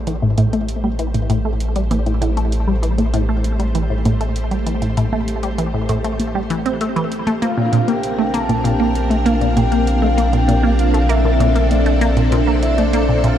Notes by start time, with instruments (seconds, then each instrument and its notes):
Already playing: analog synth bass A1, string machine A3 G4 C5
0.07 synth arpeggio sound E3, closed hi-hat
0.22 synth arpeggio sound A2
0.38 synth arpeggio sound A2, closed hi-hat
0.53 synth arpeggio sound A3, closed hi-hat
0.69 closed hi-hat
0.84 synth arpeggio sound G3, high tom
0.99 synth arpeggio sound E3, closed hi-hat
1.14 synth arpeggio sound A2, closed hi-hat
1.30 synth arpeggio sound A2, closed hi-hat
1.45 synth arpeggio sound A3
1.60 closed hi-hat
1.76 synth arpeggio sound G3, closed hi-hat
1.91 synth arpeggio sound E3, closed hi-hat, high tom
2.06 synth arpeggio sound A2, closed hi-hat
2.22 synth arpeggio sound A2, closed hi-hat
2.37 synth arpeggio sound A3, closed hi-hat
2.52 closed hi-hat
2.67 synth arpeggio sound G3
2.83 synth arpeggio sound E3, closed hi-hat
2.98 synth arpeggio sound A2, closed hi-hat, high tom
3.14 synth arpeggio sound A2, closed hi-hat
3.29 synth arpeggio sound A3
3.44 closed hi-hat
3.59 synth arpeggio sound G3, closed hi-hat
3.75 synth arpeggio sound E3, closed hi-hat
3.90 synth arpeggio sound A2
4.05 synth arpeggio sound A2, closed hi-hat, high tom
4.21 synth arpeggio sound A3, closed hi-hat
4.36 closed hi-hat
4.51 synth arpeggio sound G3, closed hi-hat
4.66 synth arpeggio sound E3, closed hi-hat
4.82 synth arpeggio sound A2, closed hi-hat
4.97 synth arpeggio sound A2, closed hi-hat
5.12 synth arpeggio sound A3, high tom
5.28 closed hi-hat
5.43 synth arpeggio sound G3, closed hi-hat
5.58 synth arpeggio sound E3, closed hi-hat
5.74 synth arpeggio sound A2
5.89 synth arpeggio sound A2, closed hi-hat
6.04 synth arpeggio sound A3, closed hi-hat
6.20 closed hi-hat, high tom
6.35 synth arpeggio sound G3
6.50 synth arpeggio sound E3, closed hi-hat
6.66 synth arpeggio sound C4, closed hi-hat
6.81 synth arpeggio sound A3, closed hi-hat
6.96 synth arpeggio sound E3, closed hi-hat
7.12 closed hi-hat
7.27 synth arpeggio sound A3, closed hi-hat, high tom
7.42 analog synth bass A#1, synth arpeggio sound A#3, string machine C4 D4 A#4, soft synth lead F5, closed hi-hat, high tom
7.57 synth arpeggio sound A#2
7.73 synth arpeggio sound A#2, closed hi-hat
7.88 synth arpeggio sound A#3, soft synth lead G5, closed hi-hat
8.03 closed hi-hat
8.19 synth arpeggio sound A3
8.34 synth arpeggio sound A#3, soft synth lead A5, closed hi-hat
8.49 synth arpeggio sound A#2, closed hi-hat, high tom
8.64 synth arpeggio sound A#2, soft synth lead G5, closed hi-hat
8.80 synth arpeggio sound A#3
8.95 closed hi-hat
9.10 synth arpeggio sound A3, closed hi-hat
9.26 synth arpeggio sound A#3, soft synth lead F5, closed hi-hat
9.41 synth arpeggio sound A#2, closed hi-hat
9.56 synth arpeggio sound A#2, soft synth lead G5, closed hi-hat, high tom
9.72 synth arpeggio sound A#3, closed hi-hat
9.87 soft synth lead F5, closed hi-hat
10.02 synth arpeggio sound A3
10.18 synth arpeggio sound A#3, closed hi-hat
10.33 synth arpeggio sound A#2, soft synth lead G5, closed hi-hat
10.48 synth arpeggio sound A#2, closed hi-hat
10.63 synth arpeggio sound A#3, high tom
10.79 soft synth lead F5, closed hi-hat
10.94 synth arpeggio sound A3, closed hi-hat
11.09 synth arpeggio sound A#3, string machine A4, soft synth lead E5, closed hi-hat
11.25 synth arpeggio sound A#2
11.40 synth arpeggio sound A#2, closed hi-hat
11.55 synth arpeggio sound A#3, closed hi-hat
11.71 soft synth lead D5, closed hi-hat, high tom
11.86 synth arpeggio sound A3, closed hi-hat
12.01 synth arpeggio sound A#3, closed hi-hat
12.17 synth arpeggio sound A#2, closed hi-hat
12.32 synth arpeggio sound A#2, closed hi-hat
12.47 synth arpeggio sound A#3
12.62 soft synth lead E5, closed hi-hat
12.78 synth arpeggio sound A3, soft synth lead D5, closed hi-hat, high tom
12.93 synth arpeggio sound A#3, closed hi-hat
13.09 synth arpeggio sound A#2
13.24 synth arpeggio sound A#2, soft synth lead F5, closed hi-hat